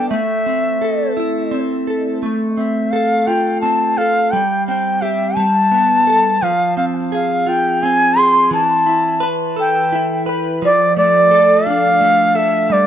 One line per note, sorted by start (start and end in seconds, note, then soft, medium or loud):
0.00 0.10 G3 medium
0.00 0.18 B3 medium
0.00 0.18 D4 soft
0.00 0.81 A4 medium
0.09 2.22 A3 medium
0.09 1.11 E5 medium
0.46 1.51 C4 medium
0.82 1.87 A4 medium
1.17 2.29 E4 medium
1.51 2.57 C4 medium
1.87 2.92 A4 medium
2.23 4.32 A3 medium
2.57 3.61 C4 soft
2.57 2.92 E5 medium
2.91 3.97 A4 medium
2.91 3.29 F5 medium
3.27 4.39 F4 medium
3.27 3.61 G5 medium
3.61 4.39 C4 medium
3.61 3.99 A5 medium
3.98 4.39 A4 medium
3.98 4.33 F5 medium
4.31 5.35 G3 medium
4.31 4.66 G5 medium
4.67 5.44 C4 medium
4.67 5.03 G5 medium
5.02 5.44 G4 medium
5.02 5.37 E5 medium
5.36 6.42 G3 medium
5.36 6.44 A5 loud
5.71 6.48 B3 medium
6.07 6.49 A4 medium
6.42 8.50 F3 medium
6.42 6.77 F5 medium
6.77 7.82 C4 medium
6.77 6.85 F5 medium
7.12 8.15 G#4 medium
7.12 7.50 F5 medium
7.46 8.58 F4 medium
7.46 7.85 G5 medium
7.83 9.23 C4 medium
7.83 8.20 G#5 medium
8.17 8.58 G#4 medium
8.17 8.53 C6 medium
8.51 10.61 E3 medium
8.51 9.26 A5 loud
8.86 9.91 E4 medium
9.20 10.25 B4 medium
9.56 11.31 A4 medium
9.56 10.24 G5 medium
9.93 10.69 E4 medium
10.26 10.68 B4 medium
10.62 12.69 F3 medium
10.62 10.96 D5 loud
10.97 12.00 A3 medium
10.97 11.68 D5 medium
11.31 12.35 A4 medium
11.67 12.87 D4 medium
11.67 12.37 F5 loud
12.01 12.87 A3 medium
12.35 12.87 A4 medium
12.35 12.74 E5 loud
12.70 12.87 G3 medium
12.70 12.87 D5 medium